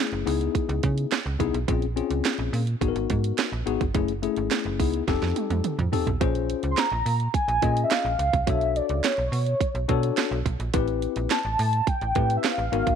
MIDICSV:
0, 0, Header, 1, 5, 480
1, 0, Start_track
1, 0, Tempo, 566038
1, 1427, Time_signature, 4, 2, 24, 8
1, 10984, End_track
2, 0, Start_track
2, 0, Title_t, "Soft synth lead"
2, 0, Program_c, 0, 80
2, 5691, Note_on_c, 0, 84, 81
2, 5751, Note_on_c, 0, 82, 110
2, 5764, Note_off_c, 0, 84, 0
2, 6222, Note_off_c, 0, 82, 0
2, 6227, Note_on_c, 0, 80, 105
2, 6618, Note_off_c, 0, 80, 0
2, 6647, Note_on_c, 0, 76, 80
2, 6709, Note_on_c, 0, 77, 108
2, 6722, Note_off_c, 0, 76, 0
2, 7188, Note_on_c, 0, 76, 101
2, 7201, Note_off_c, 0, 77, 0
2, 7431, Note_on_c, 0, 74, 93
2, 7443, Note_off_c, 0, 76, 0
2, 7673, Note_on_c, 0, 73, 89
2, 7686, Note_off_c, 0, 74, 0
2, 8870, Note_off_c, 0, 73, 0
2, 9591, Note_on_c, 0, 81, 111
2, 10072, Note_on_c, 0, 79, 113
2, 10085, Note_off_c, 0, 81, 0
2, 10485, Note_off_c, 0, 79, 0
2, 10490, Note_on_c, 0, 76, 84
2, 10551, Note_on_c, 0, 77, 107
2, 10563, Note_off_c, 0, 76, 0
2, 10984, Note_off_c, 0, 77, 0
2, 10984, End_track
3, 0, Start_track
3, 0, Title_t, "Tine electric piano"
3, 0, Program_c, 1, 4
3, 0, Note_on_c, 1, 57, 80
3, 0, Note_on_c, 1, 61, 77
3, 0, Note_on_c, 1, 64, 74
3, 0, Note_on_c, 1, 68, 101
3, 215, Note_off_c, 1, 64, 0
3, 217, Note_off_c, 1, 68, 0
3, 221, Note_on_c, 1, 59, 84
3, 223, Note_on_c, 1, 63, 78
3, 224, Note_off_c, 1, 57, 0
3, 225, Note_off_c, 1, 61, 0
3, 225, Note_on_c, 1, 64, 74
3, 227, Note_on_c, 1, 68, 96
3, 992, Note_off_c, 1, 59, 0
3, 993, Note_off_c, 1, 63, 0
3, 994, Note_off_c, 1, 64, 0
3, 995, Note_off_c, 1, 68, 0
3, 1180, Note_on_c, 1, 59, 88
3, 1183, Note_on_c, 1, 63, 85
3, 1186, Note_on_c, 1, 64, 81
3, 1188, Note_on_c, 1, 68, 103
3, 1322, Note_off_c, 1, 59, 0
3, 1324, Note_off_c, 1, 63, 0
3, 1325, Note_off_c, 1, 64, 0
3, 1326, Note_off_c, 1, 68, 0
3, 1424, Note_on_c, 1, 60, 88
3, 1425, Note_on_c, 1, 61, 73
3, 1428, Note_on_c, 1, 65, 79
3, 1432, Note_on_c, 1, 68, 90
3, 1564, Note_off_c, 1, 60, 0
3, 1565, Note_off_c, 1, 61, 0
3, 1566, Note_off_c, 1, 65, 0
3, 1568, Note_off_c, 1, 68, 0
3, 1662, Note_on_c, 1, 60, 91
3, 1665, Note_on_c, 1, 61, 81
3, 1668, Note_on_c, 1, 65, 76
3, 1669, Note_on_c, 1, 68, 86
3, 2220, Note_off_c, 1, 60, 0
3, 2221, Note_off_c, 1, 61, 0
3, 2222, Note_off_c, 1, 65, 0
3, 2223, Note_off_c, 1, 68, 0
3, 2383, Note_on_c, 1, 59, 88
3, 2384, Note_on_c, 1, 63, 78
3, 2387, Note_on_c, 1, 66, 82
3, 2390, Note_on_c, 1, 68, 75
3, 2444, Note_off_c, 1, 68, 0
3, 2445, Note_on_c, 1, 70, 87
3, 2961, Note_off_c, 1, 59, 0
3, 2962, Note_off_c, 1, 63, 0
3, 2963, Note_off_c, 1, 66, 0
3, 2992, Note_off_c, 1, 70, 0
3, 3103, Note_on_c, 1, 59, 90
3, 3105, Note_on_c, 1, 63, 82
3, 3108, Note_on_c, 1, 66, 87
3, 3109, Note_on_c, 1, 68, 97
3, 3244, Note_off_c, 1, 59, 0
3, 3245, Note_off_c, 1, 63, 0
3, 3246, Note_off_c, 1, 66, 0
3, 3247, Note_off_c, 1, 68, 0
3, 3343, Note_on_c, 1, 57, 85
3, 3346, Note_on_c, 1, 61, 78
3, 3348, Note_on_c, 1, 64, 81
3, 3350, Note_on_c, 1, 68, 96
3, 3484, Note_off_c, 1, 57, 0
3, 3485, Note_off_c, 1, 61, 0
3, 3486, Note_off_c, 1, 64, 0
3, 3487, Note_off_c, 1, 68, 0
3, 3582, Note_on_c, 1, 57, 90
3, 3584, Note_on_c, 1, 61, 70
3, 3588, Note_on_c, 1, 64, 77
3, 3590, Note_on_c, 1, 68, 102
3, 4059, Note_off_c, 1, 64, 0
3, 4062, Note_off_c, 1, 68, 0
3, 4065, Note_off_c, 1, 57, 0
3, 4065, Note_off_c, 1, 61, 0
3, 4065, Note_on_c, 1, 59, 84
3, 4067, Note_on_c, 1, 63, 72
3, 4069, Note_on_c, 1, 64, 76
3, 4072, Note_on_c, 1, 68, 88
3, 4258, Note_off_c, 1, 59, 0
3, 4259, Note_off_c, 1, 63, 0
3, 4260, Note_off_c, 1, 64, 0
3, 4261, Note_off_c, 1, 68, 0
3, 4305, Note_on_c, 1, 60, 83
3, 4307, Note_on_c, 1, 63, 73
3, 4310, Note_on_c, 1, 67, 81
3, 4311, Note_on_c, 1, 69, 93
3, 4882, Note_off_c, 1, 60, 0
3, 4883, Note_off_c, 1, 63, 0
3, 4884, Note_off_c, 1, 67, 0
3, 4885, Note_off_c, 1, 69, 0
3, 5022, Note_on_c, 1, 60, 86
3, 5024, Note_on_c, 1, 63, 78
3, 5028, Note_on_c, 1, 67, 72
3, 5029, Note_on_c, 1, 69, 93
3, 5163, Note_off_c, 1, 60, 0
3, 5164, Note_off_c, 1, 63, 0
3, 5166, Note_off_c, 1, 67, 0
3, 5167, Note_off_c, 1, 69, 0
3, 5263, Note_on_c, 1, 61, 89
3, 5265, Note_on_c, 1, 65, 79
3, 5267, Note_on_c, 1, 68, 87
3, 5269, Note_on_c, 1, 72, 100
3, 5820, Note_off_c, 1, 61, 0
3, 5821, Note_off_c, 1, 65, 0
3, 5822, Note_off_c, 1, 68, 0
3, 5823, Note_off_c, 1, 72, 0
3, 6460, Note_on_c, 1, 61, 75
3, 6463, Note_on_c, 1, 65, 74
3, 6465, Note_on_c, 1, 68, 75
3, 6466, Note_on_c, 1, 75, 88
3, 6880, Note_off_c, 1, 61, 0
3, 6881, Note_off_c, 1, 65, 0
3, 6882, Note_off_c, 1, 68, 0
3, 6883, Note_off_c, 1, 75, 0
3, 7180, Note_on_c, 1, 62, 74
3, 7182, Note_on_c, 1, 66, 70
3, 7184, Note_on_c, 1, 69, 71
3, 7186, Note_on_c, 1, 73, 81
3, 7738, Note_off_c, 1, 62, 0
3, 7740, Note_off_c, 1, 66, 0
3, 7741, Note_off_c, 1, 69, 0
3, 7742, Note_off_c, 1, 73, 0
3, 8381, Note_on_c, 1, 62, 96
3, 8383, Note_on_c, 1, 66, 87
3, 8387, Note_on_c, 1, 69, 94
3, 8388, Note_on_c, 1, 73, 98
3, 8800, Note_off_c, 1, 62, 0
3, 8801, Note_off_c, 1, 66, 0
3, 8803, Note_off_c, 1, 69, 0
3, 8804, Note_off_c, 1, 73, 0
3, 9104, Note_on_c, 1, 60, 91
3, 9105, Note_on_c, 1, 64, 81
3, 9107, Note_on_c, 1, 67, 84
3, 9110, Note_on_c, 1, 71, 101
3, 9660, Note_off_c, 1, 60, 0
3, 9661, Note_off_c, 1, 64, 0
3, 9662, Note_off_c, 1, 67, 0
3, 9663, Note_off_c, 1, 71, 0
3, 10306, Note_on_c, 1, 60, 72
3, 10306, Note_on_c, 1, 64, 74
3, 10309, Note_on_c, 1, 67, 76
3, 10312, Note_on_c, 1, 71, 86
3, 10723, Note_off_c, 1, 60, 0
3, 10723, Note_off_c, 1, 64, 0
3, 10724, Note_off_c, 1, 67, 0
3, 10726, Note_off_c, 1, 71, 0
3, 10787, Note_on_c, 1, 59, 94
3, 10789, Note_on_c, 1, 63, 84
3, 10793, Note_on_c, 1, 66, 82
3, 10794, Note_on_c, 1, 70, 108
3, 10984, Note_off_c, 1, 59, 0
3, 10984, Note_off_c, 1, 63, 0
3, 10984, Note_off_c, 1, 66, 0
3, 10984, Note_off_c, 1, 70, 0
3, 10984, End_track
4, 0, Start_track
4, 0, Title_t, "FM bass"
4, 0, Program_c, 2, 39
4, 106, Note_on_c, 2, 30, 93
4, 201, Note_off_c, 2, 30, 0
4, 226, Note_on_c, 2, 37, 97
4, 417, Note_off_c, 2, 37, 0
4, 585, Note_on_c, 2, 37, 104
4, 681, Note_off_c, 2, 37, 0
4, 708, Note_on_c, 2, 49, 106
4, 898, Note_off_c, 2, 49, 0
4, 1067, Note_on_c, 2, 37, 97
4, 1162, Note_off_c, 2, 37, 0
4, 1186, Note_on_c, 2, 36, 86
4, 1281, Note_off_c, 2, 36, 0
4, 1307, Note_on_c, 2, 35, 97
4, 1402, Note_off_c, 2, 35, 0
4, 1426, Note_on_c, 2, 34, 122
4, 1711, Note_off_c, 2, 34, 0
4, 1784, Note_on_c, 2, 37, 87
4, 1880, Note_off_c, 2, 37, 0
4, 2023, Note_on_c, 2, 34, 97
4, 2120, Note_off_c, 2, 34, 0
4, 2145, Note_on_c, 2, 46, 101
4, 2336, Note_off_c, 2, 46, 0
4, 2384, Note_on_c, 2, 32, 93
4, 2480, Note_off_c, 2, 32, 0
4, 2505, Note_on_c, 2, 32, 91
4, 2601, Note_off_c, 2, 32, 0
4, 2629, Note_on_c, 2, 44, 103
4, 2818, Note_off_c, 2, 44, 0
4, 2987, Note_on_c, 2, 34, 94
4, 3082, Note_off_c, 2, 34, 0
4, 3107, Note_on_c, 2, 32, 88
4, 3202, Note_off_c, 2, 32, 0
4, 3229, Note_on_c, 2, 31, 87
4, 3323, Note_off_c, 2, 31, 0
4, 3346, Note_on_c, 2, 30, 115
4, 3632, Note_off_c, 2, 30, 0
4, 3707, Note_on_c, 2, 32, 91
4, 3802, Note_off_c, 2, 32, 0
4, 3947, Note_on_c, 2, 30, 99
4, 4066, Note_on_c, 2, 37, 97
4, 4079, Note_off_c, 2, 30, 0
4, 4257, Note_off_c, 2, 37, 0
4, 4305, Note_on_c, 2, 29, 105
4, 4401, Note_off_c, 2, 29, 0
4, 4428, Note_on_c, 2, 41, 91
4, 4523, Note_off_c, 2, 41, 0
4, 4666, Note_on_c, 2, 41, 93
4, 4762, Note_off_c, 2, 41, 0
4, 4907, Note_on_c, 2, 41, 105
4, 5002, Note_off_c, 2, 41, 0
4, 5146, Note_on_c, 2, 35, 94
4, 5241, Note_off_c, 2, 35, 0
4, 5267, Note_on_c, 2, 34, 114
4, 5552, Note_off_c, 2, 34, 0
4, 5626, Note_on_c, 2, 37, 92
4, 5722, Note_off_c, 2, 37, 0
4, 5866, Note_on_c, 2, 34, 99
4, 5961, Note_off_c, 2, 34, 0
4, 5985, Note_on_c, 2, 46, 90
4, 6176, Note_off_c, 2, 46, 0
4, 6344, Note_on_c, 2, 34, 103
4, 6440, Note_off_c, 2, 34, 0
4, 6468, Note_on_c, 2, 46, 99
4, 6657, Note_off_c, 2, 46, 0
4, 6825, Note_on_c, 2, 34, 99
4, 6921, Note_off_c, 2, 34, 0
4, 6945, Note_on_c, 2, 37, 99
4, 7041, Note_off_c, 2, 37, 0
4, 7066, Note_on_c, 2, 36, 85
4, 7162, Note_off_c, 2, 36, 0
4, 7185, Note_on_c, 2, 35, 120
4, 7471, Note_off_c, 2, 35, 0
4, 7545, Note_on_c, 2, 37, 90
4, 7641, Note_off_c, 2, 37, 0
4, 7786, Note_on_c, 2, 35, 90
4, 7881, Note_off_c, 2, 35, 0
4, 7904, Note_on_c, 2, 47, 85
4, 8095, Note_off_c, 2, 47, 0
4, 8266, Note_on_c, 2, 35, 94
4, 8361, Note_off_c, 2, 35, 0
4, 8388, Note_on_c, 2, 47, 99
4, 8578, Note_off_c, 2, 47, 0
4, 8745, Note_on_c, 2, 35, 106
4, 8841, Note_off_c, 2, 35, 0
4, 8866, Note_on_c, 2, 35, 90
4, 8961, Note_off_c, 2, 35, 0
4, 8986, Note_on_c, 2, 34, 89
4, 9082, Note_off_c, 2, 34, 0
4, 9106, Note_on_c, 2, 33, 119
4, 9391, Note_off_c, 2, 33, 0
4, 9468, Note_on_c, 2, 34, 97
4, 9563, Note_off_c, 2, 34, 0
4, 9709, Note_on_c, 2, 33, 89
4, 9803, Note_off_c, 2, 33, 0
4, 9830, Note_on_c, 2, 45, 101
4, 10019, Note_off_c, 2, 45, 0
4, 10190, Note_on_c, 2, 33, 93
4, 10284, Note_off_c, 2, 33, 0
4, 10309, Note_on_c, 2, 45, 100
4, 10498, Note_off_c, 2, 45, 0
4, 10669, Note_on_c, 2, 33, 98
4, 10763, Note_off_c, 2, 33, 0
4, 10789, Note_on_c, 2, 32, 115
4, 10883, Note_off_c, 2, 32, 0
4, 10912, Note_on_c, 2, 33, 90
4, 10984, Note_off_c, 2, 33, 0
4, 10984, End_track
5, 0, Start_track
5, 0, Title_t, "Drums"
5, 232, Note_on_c, 9, 46, 74
5, 316, Note_off_c, 9, 46, 0
5, 348, Note_on_c, 9, 42, 48
5, 433, Note_off_c, 9, 42, 0
5, 465, Note_on_c, 9, 36, 92
5, 469, Note_on_c, 9, 42, 70
5, 550, Note_off_c, 9, 36, 0
5, 554, Note_off_c, 9, 42, 0
5, 588, Note_on_c, 9, 42, 37
5, 673, Note_off_c, 9, 42, 0
5, 705, Note_on_c, 9, 42, 78
5, 708, Note_on_c, 9, 36, 85
5, 790, Note_off_c, 9, 42, 0
5, 793, Note_off_c, 9, 36, 0
5, 828, Note_on_c, 9, 42, 57
5, 912, Note_off_c, 9, 42, 0
5, 945, Note_on_c, 9, 42, 84
5, 947, Note_on_c, 9, 39, 92
5, 953, Note_on_c, 9, 38, 108
5, 1030, Note_off_c, 9, 42, 0
5, 1032, Note_off_c, 9, 39, 0
5, 1037, Note_off_c, 9, 38, 0
5, 1187, Note_on_c, 9, 36, 79
5, 1190, Note_on_c, 9, 42, 75
5, 1271, Note_off_c, 9, 36, 0
5, 1274, Note_off_c, 9, 42, 0
5, 1310, Note_on_c, 9, 42, 54
5, 1395, Note_off_c, 9, 42, 0
5, 1426, Note_on_c, 9, 36, 100
5, 1427, Note_on_c, 9, 42, 93
5, 1511, Note_off_c, 9, 36, 0
5, 1512, Note_off_c, 9, 42, 0
5, 1545, Note_on_c, 9, 42, 34
5, 1630, Note_off_c, 9, 42, 0
5, 1671, Note_on_c, 9, 42, 63
5, 1756, Note_off_c, 9, 42, 0
5, 1785, Note_on_c, 9, 42, 53
5, 1870, Note_off_c, 9, 42, 0
5, 1906, Note_on_c, 9, 39, 89
5, 1908, Note_on_c, 9, 42, 79
5, 1911, Note_on_c, 9, 38, 115
5, 1991, Note_off_c, 9, 39, 0
5, 1993, Note_off_c, 9, 42, 0
5, 1996, Note_off_c, 9, 38, 0
5, 2151, Note_on_c, 9, 46, 68
5, 2236, Note_off_c, 9, 46, 0
5, 2265, Note_on_c, 9, 42, 48
5, 2350, Note_off_c, 9, 42, 0
5, 2386, Note_on_c, 9, 36, 84
5, 2391, Note_on_c, 9, 42, 74
5, 2471, Note_off_c, 9, 36, 0
5, 2476, Note_off_c, 9, 42, 0
5, 2508, Note_on_c, 9, 42, 35
5, 2593, Note_off_c, 9, 42, 0
5, 2626, Note_on_c, 9, 42, 76
5, 2629, Note_on_c, 9, 36, 83
5, 2711, Note_off_c, 9, 42, 0
5, 2714, Note_off_c, 9, 36, 0
5, 2749, Note_on_c, 9, 42, 61
5, 2833, Note_off_c, 9, 42, 0
5, 2865, Note_on_c, 9, 42, 92
5, 2867, Note_on_c, 9, 39, 82
5, 2872, Note_on_c, 9, 38, 114
5, 2950, Note_off_c, 9, 42, 0
5, 2952, Note_off_c, 9, 39, 0
5, 2957, Note_off_c, 9, 38, 0
5, 3111, Note_on_c, 9, 42, 68
5, 3196, Note_off_c, 9, 42, 0
5, 3229, Note_on_c, 9, 36, 89
5, 3230, Note_on_c, 9, 42, 52
5, 3314, Note_off_c, 9, 36, 0
5, 3315, Note_off_c, 9, 42, 0
5, 3346, Note_on_c, 9, 36, 102
5, 3346, Note_on_c, 9, 42, 101
5, 3431, Note_off_c, 9, 36, 0
5, 3431, Note_off_c, 9, 42, 0
5, 3463, Note_on_c, 9, 42, 34
5, 3548, Note_off_c, 9, 42, 0
5, 3587, Note_on_c, 9, 42, 67
5, 3672, Note_off_c, 9, 42, 0
5, 3701, Note_on_c, 9, 42, 49
5, 3786, Note_off_c, 9, 42, 0
5, 3823, Note_on_c, 9, 39, 92
5, 3826, Note_on_c, 9, 42, 79
5, 3828, Note_on_c, 9, 38, 107
5, 3908, Note_off_c, 9, 39, 0
5, 3910, Note_off_c, 9, 42, 0
5, 3913, Note_off_c, 9, 38, 0
5, 4067, Note_on_c, 9, 36, 82
5, 4070, Note_on_c, 9, 46, 75
5, 4152, Note_off_c, 9, 36, 0
5, 4155, Note_off_c, 9, 46, 0
5, 4186, Note_on_c, 9, 42, 50
5, 4270, Note_off_c, 9, 42, 0
5, 4306, Note_on_c, 9, 36, 84
5, 4308, Note_on_c, 9, 42, 71
5, 4310, Note_on_c, 9, 38, 50
5, 4390, Note_off_c, 9, 36, 0
5, 4392, Note_off_c, 9, 42, 0
5, 4395, Note_off_c, 9, 38, 0
5, 4427, Note_on_c, 9, 42, 33
5, 4431, Note_on_c, 9, 38, 52
5, 4512, Note_off_c, 9, 42, 0
5, 4516, Note_off_c, 9, 38, 0
5, 4546, Note_on_c, 9, 42, 76
5, 4548, Note_on_c, 9, 48, 74
5, 4631, Note_off_c, 9, 42, 0
5, 4633, Note_off_c, 9, 48, 0
5, 4667, Note_on_c, 9, 48, 72
5, 4668, Note_on_c, 9, 42, 57
5, 4752, Note_off_c, 9, 48, 0
5, 4753, Note_off_c, 9, 42, 0
5, 4784, Note_on_c, 9, 42, 85
5, 4786, Note_on_c, 9, 47, 88
5, 4869, Note_off_c, 9, 42, 0
5, 4870, Note_off_c, 9, 47, 0
5, 4908, Note_on_c, 9, 45, 73
5, 4909, Note_on_c, 9, 42, 34
5, 4992, Note_off_c, 9, 45, 0
5, 4994, Note_off_c, 9, 42, 0
5, 5027, Note_on_c, 9, 43, 100
5, 5030, Note_on_c, 9, 46, 73
5, 5111, Note_off_c, 9, 43, 0
5, 5115, Note_off_c, 9, 46, 0
5, 5146, Note_on_c, 9, 43, 89
5, 5149, Note_on_c, 9, 42, 53
5, 5231, Note_off_c, 9, 43, 0
5, 5234, Note_off_c, 9, 42, 0
5, 5266, Note_on_c, 9, 36, 107
5, 5267, Note_on_c, 9, 42, 93
5, 5351, Note_off_c, 9, 36, 0
5, 5352, Note_off_c, 9, 42, 0
5, 5386, Note_on_c, 9, 42, 35
5, 5471, Note_off_c, 9, 42, 0
5, 5509, Note_on_c, 9, 42, 69
5, 5594, Note_off_c, 9, 42, 0
5, 5622, Note_on_c, 9, 42, 52
5, 5707, Note_off_c, 9, 42, 0
5, 5743, Note_on_c, 9, 39, 96
5, 5745, Note_on_c, 9, 42, 83
5, 5748, Note_on_c, 9, 38, 102
5, 5827, Note_off_c, 9, 39, 0
5, 5830, Note_off_c, 9, 42, 0
5, 5833, Note_off_c, 9, 38, 0
5, 5989, Note_on_c, 9, 46, 66
5, 6073, Note_off_c, 9, 46, 0
5, 6105, Note_on_c, 9, 42, 45
5, 6190, Note_off_c, 9, 42, 0
5, 6225, Note_on_c, 9, 36, 97
5, 6229, Note_on_c, 9, 42, 77
5, 6309, Note_off_c, 9, 36, 0
5, 6314, Note_off_c, 9, 42, 0
5, 6348, Note_on_c, 9, 42, 33
5, 6432, Note_off_c, 9, 42, 0
5, 6465, Note_on_c, 9, 42, 78
5, 6468, Note_on_c, 9, 36, 86
5, 6550, Note_off_c, 9, 42, 0
5, 6552, Note_off_c, 9, 36, 0
5, 6587, Note_on_c, 9, 42, 57
5, 6672, Note_off_c, 9, 42, 0
5, 6705, Note_on_c, 9, 42, 86
5, 6707, Note_on_c, 9, 39, 99
5, 6712, Note_on_c, 9, 38, 115
5, 6790, Note_off_c, 9, 42, 0
5, 6792, Note_off_c, 9, 39, 0
5, 6797, Note_off_c, 9, 38, 0
5, 6949, Note_on_c, 9, 42, 79
5, 7033, Note_off_c, 9, 42, 0
5, 7068, Note_on_c, 9, 36, 95
5, 7069, Note_on_c, 9, 42, 59
5, 7153, Note_off_c, 9, 36, 0
5, 7153, Note_off_c, 9, 42, 0
5, 7185, Note_on_c, 9, 36, 111
5, 7186, Note_on_c, 9, 42, 103
5, 7269, Note_off_c, 9, 36, 0
5, 7271, Note_off_c, 9, 42, 0
5, 7304, Note_on_c, 9, 42, 36
5, 7389, Note_off_c, 9, 42, 0
5, 7429, Note_on_c, 9, 42, 72
5, 7513, Note_off_c, 9, 42, 0
5, 7542, Note_on_c, 9, 42, 50
5, 7626, Note_off_c, 9, 42, 0
5, 7665, Note_on_c, 9, 39, 91
5, 7667, Note_on_c, 9, 42, 88
5, 7670, Note_on_c, 9, 38, 111
5, 7750, Note_off_c, 9, 39, 0
5, 7752, Note_off_c, 9, 42, 0
5, 7755, Note_off_c, 9, 38, 0
5, 7911, Note_on_c, 9, 46, 73
5, 7996, Note_off_c, 9, 46, 0
5, 8027, Note_on_c, 9, 42, 46
5, 8111, Note_off_c, 9, 42, 0
5, 8146, Note_on_c, 9, 36, 101
5, 8151, Note_on_c, 9, 42, 83
5, 8230, Note_off_c, 9, 36, 0
5, 8236, Note_off_c, 9, 42, 0
5, 8268, Note_on_c, 9, 42, 35
5, 8353, Note_off_c, 9, 42, 0
5, 8385, Note_on_c, 9, 42, 81
5, 8388, Note_on_c, 9, 36, 93
5, 8470, Note_off_c, 9, 42, 0
5, 8473, Note_off_c, 9, 36, 0
5, 8507, Note_on_c, 9, 42, 62
5, 8592, Note_off_c, 9, 42, 0
5, 8624, Note_on_c, 9, 42, 85
5, 8626, Note_on_c, 9, 39, 91
5, 8631, Note_on_c, 9, 38, 122
5, 8709, Note_off_c, 9, 42, 0
5, 8711, Note_off_c, 9, 39, 0
5, 8716, Note_off_c, 9, 38, 0
5, 8867, Note_on_c, 9, 36, 88
5, 8870, Note_on_c, 9, 42, 73
5, 8952, Note_off_c, 9, 36, 0
5, 8955, Note_off_c, 9, 42, 0
5, 8988, Note_on_c, 9, 42, 57
5, 9073, Note_off_c, 9, 42, 0
5, 9104, Note_on_c, 9, 42, 102
5, 9106, Note_on_c, 9, 36, 107
5, 9189, Note_off_c, 9, 42, 0
5, 9191, Note_off_c, 9, 36, 0
5, 9223, Note_on_c, 9, 42, 33
5, 9308, Note_off_c, 9, 42, 0
5, 9348, Note_on_c, 9, 42, 68
5, 9433, Note_off_c, 9, 42, 0
5, 9462, Note_on_c, 9, 42, 49
5, 9547, Note_off_c, 9, 42, 0
5, 9584, Note_on_c, 9, 39, 92
5, 9587, Note_on_c, 9, 42, 85
5, 9590, Note_on_c, 9, 38, 125
5, 9669, Note_off_c, 9, 39, 0
5, 9672, Note_off_c, 9, 42, 0
5, 9674, Note_off_c, 9, 38, 0
5, 9829, Note_on_c, 9, 46, 71
5, 9914, Note_off_c, 9, 46, 0
5, 9947, Note_on_c, 9, 42, 51
5, 10031, Note_off_c, 9, 42, 0
5, 10066, Note_on_c, 9, 36, 106
5, 10069, Note_on_c, 9, 42, 72
5, 10151, Note_off_c, 9, 36, 0
5, 10154, Note_off_c, 9, 42, 0
5, 10188, Note_on_c, 9, 42, 35
5, 10273, Note_off_c, 9, 42, 0
5, 10305, Note_on_c, 9, 42, 76
5, 10310, Note_on_c, 9, 36, 93
5, 10390, Note_off_c, 9, 42, 0
5, 10395, Note_off_c, 9, 36, 0
5, 10430, Note_on_c, 9, 42, 60
5, 10515, Note_off_c, 9, 42, 0
5, 10546, Note_on_c, 9, 42, 81
5, 10548, Note_on_c, 9, 39, 92
5, 10554, Note_on_c, 9, 38, 116
5, 10631, Note_off_c, 9, 42, 0
5, 10633, Note_off_c, 9, 39, 0
5, 10638, Note_off_c, 9, 38, 0
5, 10793, Note_on_c, 9, 42, 71
5, 10878, Note_off_c, 9, 42, 0
5, 10912, Note_on_c, 9, 36, 84
5, 10914, Note_on_c, 9, 42, 55
5, 10984, Note_off_c, 9, 36, 0
5, 10984, Note_off_c, 9, 42, 0
5, 10984, End_track
0, 0, End_of_file